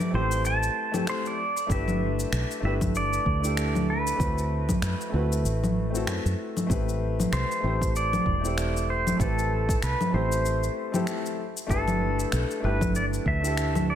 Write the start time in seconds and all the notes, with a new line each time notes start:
Already playing: A3 C4 E4 G4 A4 B4 D5
0.00 low conga, shaker
0.10 A1 A3 C4 E4
0.15 G4 C5
0.32 shaker
0.45 A5, shaker
0.63 shaker
0.92 A3 C4 E4 G4 A4, low conga, shaker
1.07 C5, finger snap, shaker
1.26 D5, shaker
1.57 shaker
1.67 G1 A3 D4 E4, kick, shaker
1.71 G4 B4 E5
1.88 low conga, shaker
2.20 shaker
2.32 B1, finger snap, shaker
2.51 shaker
2.60 G1 A3 D4 E4
2.65 G4 B4 E5
2.81 kick, low conga, shaker
2.95 D5, shaker
3.13 shaker
3.26 D2, kick
3.41 A3 D4 E4, shaker
3.45 G4 A4
3.57 finger snap, shaker
3.75 low conga, shaker
3.90 B4
4.07 shaker
4.16 D2 A3 C4 E4, kick
4.21 F#4 B4, shaker
4.38 shaker
4.69 kick, low conga, shaker
4.82 F#2, finger snap, shaker
5.01 shaker
5.10 D2 A3 C4 E4
5.15 F#4 B4
5.32 shaker
5.44 A1, shaker
5.64 low conga, shaker
5.90 A3 C4 E4
5.95 F#4 A4, shaker
6.07 F#2, finger snap, shaker
6.25 F#2, shaker
6.57 low conga, shaker
6.67 A1 A3 C4 E4, kick
6.71 G4 B4, shaker
6.89 shaker
7.20 low conga, shaker
7.32 C2 C5, finger snap, shaker
7.51 shaker
7.61 A1 A3 C4 E4
7.65 G4 C5
7.81 kick, shaker
7.96 D5, shaker
8.13 low conga, shaker
8.26 E1, kick
8.41 A3 C4 E4, shaker
8.46 G4 A4
8.58 finger snap, shaker
8.77 shaker
8.90 C5
9.07 low conga, shaker
9.16 A1 A3 C4 E4, kick, shaker
9.21 G4 A4 B4
9.39 shaker
9.69 kick, shaker
9.82 C2 B4, finger snap, shaker
10.01 low conga, shaker
10.10 A1 A3 C4 E4
10.14 G4 C5
10.32 shaker
10.46 shaker
10.63 shaker
10.92 A3 C4 E4 G4 A4, low conga, shaker
11.07 finger snap, shaker
11.26 shaker
11.57 shaker
11.67 G1 A3 D4 E4 A4, kick
11.71 G4 B4, shaker
11.88 low conga, shaker
12.20 shaker
12.32 B1, finger snap, shaker
12.51 shaker
12.60 G1 A3 D4 E4
12.65 G4 B4
12.81 kick, low conga, shaker
12.95 D5, shaker
13.13 shaker
13.26 D2 E5, kick
13.41 A3 D4 E4
13.45 G4 A4, shaker
13.57 finger snap, shaker
13.75 low conga, shaker
13.90 D5